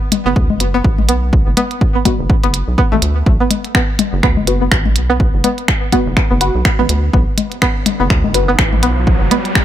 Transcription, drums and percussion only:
0.12 closed hi-hat medium
0.12 high tom medium
0.36 kick loud
0.50 low conga medium
0.60 closed hi-hat medium
0.84 kick loud
0.98 high tom soft
1.09 closed hi-hat medium
1.33 kick loud
1.57 closed hi-hat medium
1.57 low conga medium
1.71 closed hi-hat soft
1.81 kick loud
2.05 kick medium
2.05 closed hi-hat medium
2.05 high tom medium
2.30 kick loud
2.44 closed hi-hat soft
2.54 closed hi-hat medium
2.78 kick loud
2.92 high tom soft
3.02 closed hi-hat medium
3.26 kick loud
3.51 closed hi-hat medium
3.51 low conga medium
3.65 closed hi-hat soft
3.75 finger snap medium
3.75 kick loud
3.99 closed hi-hat medium
3.99 high tom medium
4.23 finger snap medium
4.23 kick loud
4.37 low conga medium
4.47 closed hi-hat medium
4.72 finger snap medium
4.72 kick loud
4.86 high tom soft
4.96 closed hi-hat medium
5.20 kick loud
5.44 closed hi-hat medium
5.44 low conga medium
5.58 closed hi-hat soft
5.68 finger snap medium
5.68 kick loud
5.92 kick medium
5.92 closed hi-hat medium
5.92 high tom medium
6.17 finger snap medium
6.17 kick loud
6.41 closed hi-hat medium
6.65 finger snap medium
6.65 kick loud
6.79 high tom soft
6.89 closed hi-hat medium
7.13 kick loud
7.38 closed hi-hat medium
7.38 low conga medium
7.52 closed hi-hat soft
7.62 finger snap medium
7.62 kick loud
7.86 closed hi-hat medium
7.86 high tom medium
8.10 finger snap medium
8.10 kick loud
8.24 low conga medium
8.34 closed hi-hat medium
8.59 finger snap medium
8.59 kick loud
8.73 high tom soft
8.83 closed hi-hat medium
9.07 kick loud
9.31 closed hi-hat medium
9.31 low conga medium
9.45 closed hi-hat soft
9.55 finger snap medium
9.55 kick loud

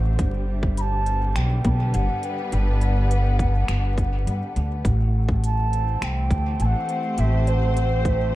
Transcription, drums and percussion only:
0.19 kick loud
0.19 closed hi-hat medium
0.63 kick loud
0.77 closed hi-hat medium
1.06 closed hi-hat soft
1.36 finger snap loud
1.36 closed hi-hat medium
1.65 kick loud
1.65 closed hi-hat soft
1.94 closed hi-hat medium
2.23 closed hi-hat soft
2.52 closed hi-hat medium
2.81 closed hi-hat soft
3.11 closed hi-hat medium
3.39 kick loud
3.39 closed hi-hat soft
3.68 finger snap loud
3.68 closed hi-hat medium
3.98 kick loud
3.98 closed hi-hat soft
4.27 closed hi-hat medium
4.56 closed hi-hat soft
4.85 kick loud
4.85 closed hi-hat medium
5.29 kick loud
5.44 closed hi-hat soft
5.73 closed hi-hat soft
6.02 finger snap medium
6.02 closed hi-hat soft
6.31 kick loud
6.31 closed hi-hat soft
6.60 closed hi-hat medium
6.89 closed hi-hat soft
7.18 closed hi-hat medium
7.47 closed hi-hat soft
7.77 closed hi-hat medium
8.05 kick loud
8.05 closed hi-hat soft

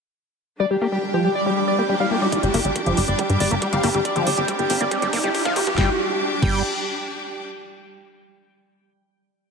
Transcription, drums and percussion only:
2.32 kick loud
2.32 closed hi-hat loud
2.43 closed hi-hat soft
2.54 open hi-hat loud
2.65 closed hi-hat soft
2.76 kick loud
2.76 closed hi-hat loud
2.86 closed hi-hat soft
2.97 open hi-hat loud
3.08 closed hi-hat soft
3.19 kick loud
3.19 closed hi-hat loud
3.30 closed hi-hat soft
3.40 open hi-hat loud
3.51 closed hi-hat soft
3.62 kick loud
3.62 closed hi-hat loud
3.73 closed hi-hat soft
3.83 open hi-hat loud
3.94 closed hi-hat soft
4.05 kick loud
4.05 closed hi-hat loud
4.16 closed hi-hat soft
4.27 open hi-hat loud
4.37 closed hi-hat soft
4.48 kick loud
4.48 closed hi-hat medium
4.59 closed hi-hat soft
4.70 open hi-hat loud
4.81 closed hi-hat soft
4.91 kick loud
4.91 closed hi-hat medium
5.02 closed hi-hat soft
5.13 kick loud
5.13 open hi-hat loud
5.35 kick loud
5.35 open hi-hat medium
5.45 kick loud
5.45 closed hi-hat soft
5.56 kick loud
5.56 open hi-hat loud
5.67 kick medium
5.67 closed hi-hat soft
5.78 kick loud
5.78 snare medium
6.42 kick loud
6.42 crash medium

